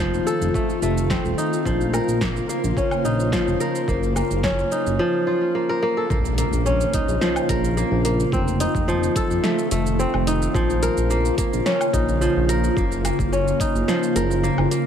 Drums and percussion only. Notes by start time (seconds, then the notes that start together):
0.14 shaker
0.27 shaker
0.42 shaker
0.54 kick, shaker
0.70 shaker
0.83 shaker
0.98 shaker
1.10 kick, snare, shaker
1.25 shaker
1.39 shaker
1.53 shaker
1.65 kick, shaker
1.81 shaker
1.94 low woodblock, shaker
2.09 shaker
2.21 kick, snare, shaker
2.37 shaker
2.50 shaker
2.64 shaker
2.77 kick, shaker
2.91 low woodblock, shaker
3.05 shaker
3.20 shaker
3.32 kick, snare, shaker
3.48 shaker
3.61 shaker
3.75 shaker
3.88 kick, shaker
4.03 shaker
4.16 low woodblock, shaker
4.31 shaker
4.43 kick, snare, shaker
4.59 shaker
4.72 shaker
4.86 shaker
6.10 kick, shaker
6.25 shaker
6.38 closed hi-hat, shaker
6.53 shaker
6.66 shaker
6.81 shaker
6.93 kick, closed hi-hat, shaker
7.09 shaker
7.21 snare, shaker
7.36 low woodblock, shaker
7.49 kick, closed hi-hat, shaker
7.64 shaker
7.78 shaker
8.05 closed hi-hat, shaker
8.20 shaker
8.32 kick, shaker
8.48 shaker
8.60 closed hi-hat, shaker
8.75 kick, shaker
8.89 shaker
9.03 shaker
9.16 kick, closed hi-hat, shaker
9.31 shaker
9.44 snare, shaker
9.59 shaker
9.71 closed hi-hat, shaker
9.87 shaker
10.00 shaker
10.14 low woodblock
10.27 closed hi-hat, shaker
10.42 shaker
10.55 kick, shaker
10.70 shaker
10.83 closed hi-hat, shaker
10.97 shaker
11.11 shaker
11.25 shaker
11.38 kick, closed hi-hat, shaker
11.53 shaker
11.66 snare, shaker
11.81 low woodblock, shaker
11.93 kick, closed hi-hat, shaker
12.09 shaker
12.22 shaker
12.49 closed hi-hat, shaker
12.64 shaker
12.77 kick, shaker
12.92 shaker
13.05 closed hi-hat, low woodblock, shaker
13.19 kick, shaker
13.33 shaker
13.48 shaker
13.60 kick, closed hi-hat, shaker
13.76 shaker
13.88 snare, shaker
14.03 shaker
14.16 closed hi-hat, shaker
14.31 shaker
14.44 shaker
14.58 low woodblock
14.71 closed hi-hat, shaker